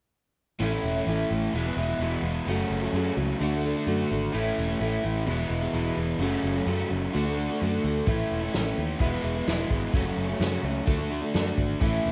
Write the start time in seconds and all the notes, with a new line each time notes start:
0.59 A1 A2 E3 A3 C#4 E4
0.72 A3 C#4 E4
0.83 E1
0.95 A3 C#4 E4
1.07 A1 A2 E3 A3 C#4 E4
1.30 A1 E3 A3 C#4 E4
1.54 E1 E2 B2 E3 G#3 B3 E4
1.66 E3 G#3 B3 E4
1.76 E1 E3 G#3 B3 E4
1.88 E3 G#3 B3 E4
1.99 E1 E2 B2 E3 G#3 B3 E4
2.22 E1 E3 G#3 B3 E4
2.47 F#1 F#2 C#3 F#3 A3 C#4 F#4
2.70 F#1
2.82 F#3 A3 C#4 F#4
2.93 F#2 C#3 F#3 A3 C#4 F#4
3.17 C#2 F#3 A3 C#4 F#4
3.40 D2 D3 A3 D4 F#4
3.53 A3 D4 F#4
3.64 D3 A3 D4 F#4
3.75 A3 D4 F#4
3.86 F#2 D3 A3 D4 F#4
4.10 G#1 D3 A3 D4 F#4
4.33 A1 A2 E3 A3 C#4 E4
4.58 E1
4.69 A3 C#4 E4
4.80 A1 A2 E3 A3 C#4 E4
5.03 A1 E3 A3 C#4 E4
5.26 E1 E2 B2 E3 G#3 B3 E4
5.37 E3 G#3 B3 E4
5.48 E1 E3 G#3 B3 E4
5.61 E3 G#3 B3 E4
5.73 E1 E2 B2 E3 G#3 B3 E4
5.96 E1 E3 G#3 B3 E4
6.18 F#1 F#2 C#3 F#3 A3 C#4 F#4
6.43 F#1
6.55 F#3 A3 C#4 F#4
6.66 F#2 C#3 F#3 A3 C#4 F#4
6.90 F#1 F#3 A3 C#4 F#4
7.12 D2 D3 A3 D4 F#4
7.25 A3 D4 F#4
7.36 D3 A3 D4 F#4
7.49 A3 D4 F#4
7.60 F#2 D3 A3 D4 F#4
7.83 D2 D3 A3 D4 F#4
8.06 A1 A2 E3 A3 C#4 E4, kick, open hi-hat
8.31 E1
8.42 A3 C#4 E4
8.53 A1 A2 E3 A3 C#4 E4, snare, open hi-hat
8.76 D#2 E3 A3 C#4 E4
9.00 E1 E2 B2 E3 G#3 B3 E4, kick, open hi-hat
9.12 E3 G#3 B3 E4
9.22 E1 E3 G#3 B3 E4
9.35 E3 G#3 B3 E4
9.47 E1 E2 B2 E3 G#3 B3 E4, snare, open hi-hat
9.70 G#1 E3 G#3 B3 E4, kick
9.93 F#1 F#2 C#3 F#3 A3 C#4 F#4, kick, open hi-hat
10.04 F#3 A3 C#4 F#4
10.17 F#1
10.28 F#3 A3 C#4 F#4
10.40 F#2 C#3 F#3 A3 C#4 F#4, snare, open hi-hat
10.63 C#2 F#3 A3 C#4 F#4
10.87 D2 D3 A3 D4 F#4, kick, open hi-hat
10.97 A3 D4 F#4
11.09 D3 A3 D4 F#4
11.21 A3 D4 F#4
11.34 F#2 D3 A3 D4 F#4, snare, open hi-hat
11.56 G#1 D3 A3 D4 F#4, kick
11.80 A1 A2 E3 A3 C#4 E4, kick, open hi-hat
12.06 E1